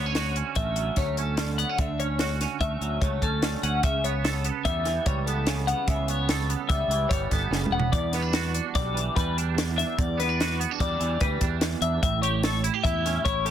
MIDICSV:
0, 0, Header, 1, 5, 480
1, 0, Start_track
1, 0, Tempo, 408998
1, 2098, Time_signature, 5, 2, 24, 8
1, 15851, End_track
2, 0, Start_track
2, 0, Title_t, "Clean electric guitar"
2, 0, Program_c, 0, 27
2, 0, Note_on_c, 0, 73, 60
2, 423, Note_off_c, 0, 73, 0
2, 660, Note_on_c, 0, 76, 65
2, 1140, Note_off_c, 0, 76, 0
2, 1145, Note_on_c, 0, 73, 67
2, 1385, Note_off_c, 0, 73, 0
2, 1385, Note_on_c, 0, 69, 56
2, 1856, Note_on_c, 0, 78, 59
2, 1862, Note_off_c, 0, 69, 0
2, 2102, Note_off_c, 0, 78, 0
2, 2102, Note_on_c, 0, 76, 73
2, 2340, Note_off_c, 0, 76, 0
2, 2342, Note_on_c, 0, 73, 60
2, 2820, Note_off_c, 0, 73, 0
2, 3060, Note_on_c, 0, 76, 59
2, 3538, Note_off_c, 0, 76, 0
2, 3542, Note_on_c, 0, 73, 65
2, 3780, Note_off_c, 0, 73, 0
2, 3789, Note_on_c, 0, 69, 56
2, 4263, Note_off_c, 0, 69, 0
2, 4266, Note_on_c, 0, 78, 66
2, 4501, Note_off_c, 0, 78, 0
2, 4506, Note_on_c, 0, 76, 73
2, 4741, Note_off_c, 0, 76, 0
2, 4744, Note_on_c, 0, 73, 68
2, 5220, Note_off_c, 0, 73, 0
2, 5457, Note_on_c, 0, 76, 68
2, 5937, Note_off_c, 0, 76, 0
2, 5943, Note_on_c, 0, 73, 71
2, 6178, Note_off_c, 0, 73, 0
2, 6178, Note_on_c, 0, 69, 64
2, 6658, Note_off_c, 0, 69, 0
2, 6658, Note_on_c, 0, 78, 64
2, 6905, Note_off_c, 0, 78, 0
2, 6905, Note_on_c, 0, 76, 74
2, 7145, Note_off_c, 0, 76, 0
2, 7145, Note_on_c, 0, 73, 63
2, 7622, Note_off_c, 0, 73, 0
2, 7849, Note_on_c, 0, 76, 68
2, 8324, Note_on_c, 0, 73, 69
2, 8334, Note_off_c, 0, 76, 0
2, 8580, Note_off_c, 0, 73, 0
2, 8580, Note_on_c, 0, 69, 64
2, 9060, Note_off_c, 0, 69, 0
2, 9064, Note_on_c, 0, 78, 63
2, 9294, Note_off_c, 0, 78, 0
2, 9298, Note_on_c, 0, 74, 73
2, 9543, Note_off_c, 0, 74, 0
2, 9543, Note_on_c, 0, 71, 70
2, 10022, Note_off_c, 0, 71, 0
2, 10273, Note_on_c, 0, 74, 72
2, 10748, Note_off_c, 0, 74, 0
2, 10754, Note_on_c, 0, 71, 75
2, 10988, Note_off_c, 0, 71, 0
2, 11476, Note_on_c, 0, 76, 70
2, 11719, Note_off_c, 0, 76, 0
2, 11719, Note_on_c, 0, 74, 72
2, 11951, Note_off_c, 0, 74, 0
2, 11966, Note_on_c, 0, 71, 68
2, 12435, Note_off_c, 0, 71, 0
2, 12685, Note_on_c, 0, 74, 72
2, 13155, Note_off_c, 0, 74, 0
2, 13157, Note_on_c, 0, 71, 67
2, 13391, Note_off_c, 0, 71, 0
2, 13873, Note_on_c, 0, 76, 68
2, 14102, Note_off_c, 0, 76, 0
2, 14116, Note_on_c, 0, 76, 75
2, 14338, Note_off_c, 0, 76, 0
2, 14342, Note_on_c, 0, 73, 70
2, 14824, Note_off_c, 0, 73, 0
2, 15064, Note_on_c, 0, 76, 71
2, 15542, Note_off_c, 0, 76, 0
2, 15547, Note_on_c, 0, 73, 76
2, 15787, Note_off_c, 0, 73, 0
2, 15791, Note_on_c, 0, 69, 64
2, 15851, Note_off_c, 0, 69, 0
2, 15851, End_track
3, 0, Start_track
3, 0, Title_t, "Clean electric guitar"
3, 0, Program_c, 1, 27
3, 0, Note_on_c, 1, 50, 58
3, 71, Note_on_c, 1, 61, 37
3, 193, Note_on_c, 1, 66, 45
3, 413, Note_off_c, 1, 61, 0
3, 427, Note_on_c, 1, 61, 45
3, 661, Note_on_c, 1, 57, 49
3, 888, Note_on_c, 1, 54, 43
3, 1138, Note_off_c, 1, 57, 0
3, 1142, Note_on_c, 1, 57, 48
3, 1384, Note_off_c, 1, 61, 0
3, 1389, Note_on_c, 1, 61, 46
3, 1603, Note_off_c, 1, 50, 0
3, 1618, Note_on_c, 1, 50, 61
3, 1858, Note_off_c, 1, 61, 0
3, 1863, Note_on_c, 1, 59, 47
3, 1986, Note_off_c, 1, 59, 0
3, 1986, Note_on_c, 1, 61, 41
3, 2063, Note_off_c, 1, 54, 0
3, 2069, Note_off_c, 1, 50, 0
3, 2075, Note_off_c, 1, 66, 0
3, 2100, Note_on_c, 1, 50, 58
3, 2102, Note_off_c, 1, 61, 0
3, 2349, Note_on_c, 1, 61, 45
3, 2581, Note_on_c, 1, 66, 49
3, 2828, Note_off_c, 1, 61, 0
3, 2832, Note_on_c, 1, 61, 45
3, 3065, Note_off_c, 1, 57, 0
3, 3070, Note_on_c, 1, 57, 48
3, 3313, Note_on_c, 1, 54, 45
3, 3559, Note_off_c, 1, 57, 0
3, 3563, Note_on_c, 1, 57, 47
3, 3783, Note_off_c, 1, 61, 0
3, 3787, Note_on_c, 1, 61, 45
3, 4006, Note_off_c, 1, 50, 0
3, 4020, Note_on_c, 1, 50, 58
3, 4261, Note_off_c, 1, 61, 0
3, 4265, Note_on_c, 1, 61, 45
3, 4469, Note_off_c, 1, 50, 0
3, 4469, Note_off_c, 1, 66, 0
3, 4476, Note_off_c, 1, 54, 0
3, 4504, Note_on_c, 1, 49, 60
3, 4750, Note_off_c, 1, 61, 0
3, 4755, Note_on_c, 1, 59, 47
3, 4790, Note_off_c, 1, 57, 0
3, 4979, Note_on_c, 1, 69, 52
3, 5216, Note_off_c, 1, 59, 0
3, 5221, Note_on_c, 1, 59, 45
3, 5458, Note_on_c, 1, 55, 50
3, 5695, Note_on_c, 1, 52, 56
3, 5700, Note_off_c, 1, 49, 0
3, 5947, Note_off_c, 1, 55, 0
3, 5951, Note_on_c, 1, 55, 52
3, 6192, Note_off_c, 1, 59, 0
3, 6196, Note_on_c, 1, 59, 50
3, 6419, Note_on_c, 1, 49, 67
3, 6656, Note_off_c, 1, 59, 0
3, 6660, Note_on_c, 1, 59, 48
3, 6869, Note_off_c, 1, 49, 0
3, 6869, Note_off_c, 1, 69, 0
3, 6899, Note_on_c, 1, 49, 65
3, 7153, Note_off_c, 1, 59, 0
3, 7158, Note_on_c, 1, 59, 54
3, 7395, Note_on_c, 1, 69, 53
3, 7614, Note_off_c, 1, 59, 0
3, 7619, Note_on_c, 1, 59, 47
3, 7864, Note_off_c, 1, 55, 0
3, 7869, Note_on_c, 1, 55, 56
3, 8093, Note_off_c, 1, 52, 0
3, 8098, Note_on_c, 1, 52, 51
3, 8099, Note_off_c, 1, 49, 0
3, 8340, Note_off_c, 1, 55, 0
3, 8345, Note_on_c, 1, 55, 51
3, 8584, Note_off_c, 1, 59, 0
3, 8589, Note_on_c, 1, 59, 48
3, 8818, Note_on_c, 1, 49, 61
3, 9077, Note_off_c, 1, 59, 0
3, 9081, Note_on_c, 1, 59, 51
3, 9271, Note_off_c, 1, 49, 0
3, 9280, Note_off_c, 1, 69, 0
3, 9308, Note_on_c, 1, 40, 63
3, 9549, Note_off_c, 1, 59, 0
3, 9553, Note_on_c, 1, 59, 47
3, 9651, Note_off_c, 1, 59, 0
3, 9651, Note_on_c, 1, 62, 39
3, 9686, Note_off_c, 1, 52, 0
3, 9783, Note_on_c, 1, 66, 52
3, 10010, Note_off_c, 1, 62, 0
3, 10024, Note_on_c, 1, 62, 48
3, 10262, Note_off_c, 1, 55, 0
3, 10267, Note_on_c, 1, 55, 48
3, 10496, Note_on_c, 1, 52, 50
3, 10748, Note_off_c, 1, 55, 0
3, 10753, Note_on_c, 1, 55, 54
3, 10984, Note_off_c, 1, 62, 0
3, 11007, Note_on_c, 1, 62, 46
3, 11196, Note_off_c, 1, 40, 0
3, 11210, Note_on_c, 1, 40, 64
3, 11441, Note_off_c, 1, 62, 0
3, 11455, Note_on_c, 1, 62, 52
3, 11671, Note_off_c, 1, 62, 0
3, 11676, Note_off_c, 1, 66, 0
3, 11687, Note_off_c, 1, 40, 0
3, 11701, Note_on_c, 1, 40, 64
3, 11941, Note_on_c, 1, 59, 52
3, 12076, Note_off_c, 1, 59, 0
3, 12076, Note_on_c, 1, 62, 44
3, 12111, Note_off_c, 1, 52, 0
3, 12215, Note_on_c, 1, 66, 52
3, 12430, Note_off_c, 1, 62, 0
3, 12436, Note_on_c, 1, 59, 54
3, 12571, Note_off_c, 1, 59, 0
3, 12571, Note_on_c, 1, 62, 46
3, 12677, Note_off_c, 1, 55, 0
3, 12682, Note_on_c, 1, 55, 58
3, 12905, Note_on_c, 1, 52, 54
3, 13167, Note_off_c, 1, 55, 0
3, 13172, Note_on_c, 1, 55, 53
3, 13381, Note_off_c, 1, 62, 0
3, 13395, Note_on_c, 1, 62, 50
3, 13616, Note_off_c, 1, 40, 0
3, 13630, Note_on_c, 1, 40, 68
3, 13870, Note_off_c, 1, 62, 0
3, 13891, Note_on_c, 1, 62, 47
3, 14077, Note_off_c, 1, 52, 0
3, 14090, Note_off_c, 1, 62, 0
3, 14092, Note_off_c, 1, 66, 0
3, 14108, Note_off_c, 1, 40, 0
3, 14123, Note_on_c, 1, 45, 67
3, 14358, Note_on_c, 1, 67, 60
3, 14596, Note_off_c, 1, 67, 0
3, 14600, Note_on_c, 1, 69, 56
3, 14828, Note_off_c, 1, 69, 0
3, 14832, Note_on_c, 1, 64, 61
3, 14947, Note_off_c, 1, 64, 0
3, 14947, Note_on_c, 1, 67, 59
3, 15073, Note_on_c, 1, 64, 58
3, 15317, Note_off_c, 1, 55, 0
3, 15322, Note_on_c, 1, 61, 50
3, 15536, Note_off_c, 1, 64, 0
3, 15550, Note_on_c, 1, 64, 54
3, 15783, Note_off_c, 1, 67, 0
3, 15797, Note_on_c, 1, 67, 59
3, 15851, Note_off_c, 1, 45, 0
3, 15851, Note_off_c, 1, 61, 0
3, 15851, Note_off_c, 1, 64, 0
3, 15851, Note_off_c, 1, 67, 0
3, 15851, End_track
4, 0, Start_track
4, 0, Title_t, "Fingered electric bass"
4, 0, Program_c, 2, 33
4, 0, Note_on_c, 2, 38, 78
4, 483, Note_off_c, 2, 38, 0
4, 655, Note_on_c, 2, 33, 80
4, 1046, Note_off_c, 2, 33, 0
4, 1134, Note_on_c, 2, 38, 73
4, 1913, Note_off_c, 2, 38, 0
4, 2096, Note_on_c, 2, 38, 77
4, 2874, Note_off_c, 2, 38, 0
4, 3053, Note_on_c, 2, 38, 77
4, 3249, Note_off_c, 2, 38, 0
4, 3296, Note_on_c, 2, 38, 79
4, 3491, Note_off_c, 2, 38, 0
4, 3538, Note_on_c, 2, 37, 81
4, 3732, Note_off_c, 2, 37, 0
4, 3773, Note_on_c, 2, 38, 74
4, 4164, Note_off_c, 2, 38, 0
4, 4261, Note_on_c, 2, 38, 69
4, 4453, Note_off_c, 2, 38, 0
4, 4498, Note_on_c, 2, 37, 81
4, 5276, Note_off_c, 2, 37, 0
4, 5454, Note_on_c, 2, 40, 88
4, 5844, Note_off_c, 2, 40, 0
4, 5944, Note_on_c, 2, 37, 88
4, 6719, Note_off_c, 2, 37, 0
4, 6901, Note_on_c, 2, 37, 81
4, 7678, Note_off_c, 2, 37, 0
4, 7857, Note_on_c, 2, 37, 85
4, 8052, Note_off_c, 2, 37, 0
4, 8073, Note_on_c, 2, 37, 83
4, 8278, Note_off_c, 2, 37, 0
4, 8337, Note_on_c, 2, 31, 73
4, 8533, Note_off_c, 2, 31, 0
4, 8579, Note_on_c, 2, 31, 73
4, 8796, Note_off_c, 2, 31, 0
4, 8807, Note_on_c, 2, 30, 76
4, 9029, Note_off_c, 2, 30, 0
4, 9038, Note_on_c, 2, 28, 66
4, 9264, Note_off_c, 2, 28, 0
4, 9302, Note_on_c, 2, 40, 87
4, 10080, Note_off_c, 2, 40, 0
4, 10265, Note_on_c, 2, 35, 84
4, 10654, Note_off_c, 2, 35, 0
4, 10753, Note_on_c, 2, 40, 88
4, 11528, Note_off_c, 2, 40, 0
4, 11720, Note_on_c, 2, 40, 83
4, 12492, Note_off_c, 2, 40, 0
4, 12675, Note_on_c, 2, 40, 95
4, 12866, Note_off_c, 2, 40, 0
4, 12916, Note_on_c, 2, 40, 93
4, 13106, Note_off_c, 2, 40, 0
4, 13160, Note_on_c, 2, 38, 82
4, 13349, Note_off_c, 2, 38, 0
4, 13393, Note_on_c, 2, 40, 73
4, 13779, Note_off_c, 2, 40, 0
4, 13863, Note_on_c, 2, 40, 74
4, 14059, Note_off_c, 2, 40, 0
4, 14109, Note_on_c, 2, 33, 92
4, 14886, Note_off_c, 2, 33, 0
4, 15072, Note_on_c, 2, 40, 93
4, 15459, Note_off_c, 2, 40, 0
4, 15550, Note_on_c, 2, 33, 82
4, 15851, Note_off_c, 2, 33, 0
4, 15851, End_track
5, 0, Start_track
5, 0, Title_t, "Drums"
5, 175, Note_on_c, 9, 42, 65
5, 178, Note_on_c, 9, 38, 85
5, 292, Note_off_c, 9, 42, 0
5, 296, Note_off_c, 9, 38, 0
5, 420, Note_on_c, 9, 42, 50
5, 538, Note_off_c, 9, 42, 0
5, 650, Note_on_c, 9, 42, 60
5, 659, Note_on_c, 9, 36, 77
5, 767, Note_off_c, 9, 42, 0
5, 777, Note_off_c, 9, 36, 0
5, 891, Note_on_c, 9, 42, 53
5, 1009, Note_off_c, 9, 42, 0
5, 1129, Note_on_c, 9, 42, 67
5, 1133, Note_on_c, 9, 38, 27
5, 1137, Note_on_c, 9, 36, 78
5, 1247, Note_off_c, 9, 42, 0
5, 1250, Note_off_c, 9, 38, 0
5, 1254, Note_off_c, 9, 36, 0
5, 1377, Note_on_c, 9, 42, 47
5, 1495, Note_off_c, 9, 42, 0
5, 1612, Note_on_c, 9, 42, 70
5, 1615, Note_on_c, 9, 38, 96
5, 1729, Note_off_c, 9, 42, 0
5, 1733, Note_off_c, 9, 38, 0
5, 1861, Note_on_c, 9, 42, 57
5, 1978, Note_off_c, 9, 42, 0
5, 2094, Note_on_c, 9, 42, 71
5, 2096, Note_on_c, 9, 36, 92
5, 2211, Note_off_c, 9, 42, 0
5, 2213, Note_off_c, 9, 36, 0
5, 2344, Note_on_c, 9, 42, 46
5, 2461, Note_off_c, 9, 42, 0
5, 2571, Note_on_c, 9, 42, 66
5, 2575, Note_on_c, 9, 38, 93
5, 2688, Note_off_c, 9, 42, 0
5, 2692, Note_off_c, 9, 38, 0
5, 2825, Note_on_c, 9, 42, 49
5, 2828, Note_on_c, 9, 38, 29
5, 2942, Note_off_c, 9, 42, 0
5, 2946, Note_off_c, 9, 38, 0
5, 3059, Note_on_c, 9, 36, 84
5, 3061, Note_on_c, 9, 42, 57
5, 3176, Note_off_c, 9, 36, 0
5, 3179, Note_off_c, 9, 42, 0
5, 3304, Note_on_c, 9, 42, 47
5, 3421, Note_off_c, 9, 42, 0
5, 3539, Note_on_c, 9, 36, 86
5, 3543, Note_on_c, 9, 42, 66
5, 3657, Note_off_c, 9, 36, 0
5, 3661, Note_off_c, 9, 42, 0
5, 3779, Note_on_c, 9, 36, 56
5, 3782, Note_on_c, 9, 42, 51
5, 3896, Note_off_c, 9, 36, 0
5, 3899, Note_off_c, 9, 42, 0
5, 4019, Note_on_c, 9, 42, 75
5, 4022, Note_on_c, 9, 38, 100
5, 4136, Note_off_c, 9, 42, 0
5, 4140, Note_off_c, 9, 38, 0
5, 4264, Note_on_c, 9, 42, 52
5, 4382, Note_off_c, 9, 42, 0
5, 4497, Note_on_c, 9, 42, 71
5, 4502, Note_on_c, 9, 36, 93
5, 4614, Note_off_c, 9, 42, 0
5, 4619, Note_off_c, 9, 36, 0
5, 4746, Note_on_c, 9, 42, 53
5, 4863, Note_off_c, 9, 42, 0
5, 4983, Note_on_c, 9, 42, 64
5, 4987, Note_on_c, 9, 38, 86
5, 5100, Note_off_c, 9, 42, 0
5, 5104, Note_off_c, 9, 38, 0
5, 5216, Note_on_c, 9, 42, 56
5, 5333, Note_off_c, 9, 42, 0
5, 5458, Note_on_c, 9, 42, 68
5, 5460, Note_on_c, 9, 36, 80
5, 5575, Note_off_c, 9, 42, 0
5, 5577, Note_off_c, 9, 36, 0
5, 5697, Note_on_c, 9, 42, 56
5, 5700, Note_on_c, 9, 38, 28
5, 5814, Note_off_c, 9, 42, 0
5, 5818, Note_off_c, 9, 38, 0
5, 5938, Note_on_c, 9, 42, 70
5, 5941, Note_on_c, 9, 36, 85
5, 6055, Note_off_c, 9, 42, 0
5, 6058, Note_off_c, 9, 36, 0
5, 6189, Note_on_c, 9, 42, 55
5, 6306, Note_off_c, 9, 42, 0
5, 6415, Note_on_c, 9, 42, 80
5, 6418, Note_on_c, 9, 38, 100
5, 6532, Note_off_c, 9, 42, 0
5, 6535, Note_off_c, 9, 38, 0
5, 6664, Note_on_c, 9, 42, 52
5, 6781, Note_off_c, 9, 42, 0
5, 6896, Note_on_c, 9, 42, 68
5, 6898, Note_on_c, 9, 36, 89
5, 7014, Note_off_c, 9, 42, 0
5, 7015, Note_off_c, 9, 36, 0
5, 7138, Note_on_c, 9, 42, 51
5, 7256, Note_off_c, 9, 42, 0
5, 7379, Note_on_c, 9, 42, 65
5, 7383, Note_on_c, 9, 38, 90
5, 7497, Note_off_c, 9, 42, 0
5, 7500, Note_off_c, 9, 38, 0
5, 7626, Note_on_c, 9, 42, 49
5, 7743, Note_off_c, 9, 42, 0
5, 7857, Note_on_c, 9, 42, 63
5, 7858, Note_on_c, 9, 36, 84
5, 7974, Note_off_c, 9, 42, 0
5, 7976, Note_off_c, 9, 36, 0
5, 8109, Note_on_c, 9, 42, 51
5, 8226, Note_off_c, 9, 42, 0
5, 8341, Note_on_c, 9, 36, 89
5, 8345, Note_on_c, 9, 42, 66
5, 8459, Note_off_c, 9, 36, 0
5, 8462, Note_off_c, 9, 42, 0
5, 8582, Note_on_c, 9, 42, 46
5, 8585, Note_on_c, 9, 36, 56
5, 8586, Note_on_c, 9, 38, 28
5, 8700, Note_off_c, 9, 42, 0
5, 8702, Note_off_c, 9, 36, 0
5, 8703, Note_off_c, 9, 38, 0
5, 8831, Note_on_c, 9, 38, 53
5, 8949, Note_off_c, 9, 38, 0
5, 8990, Note_on_c, 9, 47, 50
5, 9108, Note_off_c, 9, 47, 0
5, 9149, Note_on_c, 9, 43, 77
5, 9266, Note_off_c, 9, 43, 0
5, 9305, Note_on_c, 9, 36, 97
5, 9307, Note_on_c, 9, 42, 74
5, 9422, Note_off_c, 9, 36, 0
5, 9425, Note_off_c, 9, 42, 0
5, 9540, Note_on_c, 9, 42, 49
5, 9544, Note_on_c, 9, 38, 30
5, 9658, Note_off_c, 9, 42, 0
5, 9661, Note_off_c, 9, 38, 0
5, 9779, Note_on_c, 9, 42, 75
5, 9783, Note_on_c, 9, 38, 95
5, 9897, Note_off_c, 9, 42, 0
5, 9900, Note_off_c, 9, 38, 0
5, 10028, Note_on_c, 9, 42, 57
5, 10145, Note_off_c, 9, 42, 0
5, 10270, Note_on_c, 9, 42, 70
5, 10272, Note_on_c, 9, 36, 85
5, 10273, Note_on_c, 9, 38, 27
5, 10387, Note_off_c, 9, 42, 0
5, 10389, Note_off_c, 9, 36, 0
5, 10391, Note_off_c, 9, 38, 0
5, 10528, Note_on_c, 9, 42, 56
5, 10646, Note_off_c, 9, 42, 0
5, 10756, Note_on_c, 9, 36, 88
5, 10766, Note_on_c, 9, 42, 73
5, 10874, Note_off_c, 9, 36, 0
5, 10883, Note_off_c, 9, 42, 0
5, 11009, Note_on_c, 9, 42, 53
5, 11126, Note_off_c, 9, 42, 0
5, 11244, Note_on_c, 9, 42, 80
5, 11247, Note_on_c, 9, 38, 100
5, 11361, Note_off_c, 9, 42, 0
5, 11364, Note_off_c, 9, 38, 0
5, 11490, Note_on_c, 9, 42, 53
5, 11494, Note_on_c, 9, 38, 29
5, 11608, Note_off_c, 9, 42, 0
5, 11611, Note_off_c, 9, 38, 0
5, 11719, Note_on_c, 9, 36, 100
5, 11722, Note_on_c, 9, 42, 68
5, 11836, Note_off_c, 9, 36, 0
5, 11839, Note_off_c, 9, 42, 0
5, 11967, Note_on_c, 9, 42, 50
5, 11971, Note_on_c, 9, 38, 29
5, 12085, Note_off_c, 9, 42, 0
5, 12088, Note_off_c, 9, 38, 0
5, 12210, Note_on_c, 9, 42, 61
5, 12214, Note_on_c, 9, 38, 91
5, 12328, Note_off_c, 9, 42, 0
5, 12331, Note_off_c, 9, 38, 0
5, 12451, Note_on_c, 9, 42, 55
5, 12568, Note_off_c, 9, 42, 0
5, 12678, Note_on_c, 9, 36, 83
5, 12679, Note_on_c, 9, 42, 63
5, 12796, Note_off_c, 9, 36, 0
5, 12796, Note_off_c, 9, 42, 0
5, 12917, Note_on_c, 9, 42, 50
5, 13034, Note_off_c, 9, 42, 0
5, 13150, Note_on_c, 9, 42, 68
5, 13156, Note_on_c, 9, 36, 88
5, 13268, Note_off_c, 9, 42, 0
5, 13274, Note_off_c, 9, 36, 0
5, 13389, Note_on_c, 9, 42, 51
5, 13394, Note_on_c, 9, 36, 62
5, 13507, Note_off_c, 9, 42, 0
5, 13511, Note_off_c, 9, 36, 0
5, 13628, Note_on_c, 9, 42, 81
5, 13631, Note_on_c, 9, 38, 94
5, 13745, Note_off_c, 9, 42, 0
5, 13748, Note_off_c, 9, 38, 0
5, 13868, Note_on_c, 9, 42, 59
5, 13986, Note_off_c, 9, 42, 0
5, 14116, Note_on_c, 9, 36, 98
5, 14116, Note_on_c, 9, 42, 79
5, 14233, Note_off_c, 9, 36, 0
5, 14233, Note_off_c, 9, 42, 0
5, 14354, Note_on_c, 9, 42, 57
5, 14471, Note_off_c, 9, 42, 0
5, 14592, Note_on_c, 9, 42, 73
5, 14596, Note_on_c, 9, 38, 92
5, 14710, Note_off_c, 9, 42, 0
5, 14713, Note_off_c, 9, 38, 0
5, 14836, Note_on_c, 9, 42, 61
5, 14953, Note_off_c, 9, 42, 0
5, 15076, Note_on_c, 9, 36, 89
5, 15083, Note_on_c, 9, 42, 72
5, 15193, Note_off_c, 9, 36, 0
5, 15200, Note_off_c, 9, 42, 0
5, 15324, Note_on_c, 9, 42, 56
5, 15327, Note_on_c, 9, 38, 30
5, 15441, Note_off_c, 9, 42, 0
5, 15445, Note_off_c, 9, 38, 0
5, 15557, Note_on_c, 9, 36, 96
5, 15561, Note_on_c, 9, 42, 68
5, 15674, Note_off_c, 9, 36, 0
5, 15679, Note_off_c, 9, 42, 0
5, 15796, Note_on_c, 9, 42, 52
5, 15851, Note_off_c, 9, 42, 0
5, 15851, End_track
0, 0, End_of_file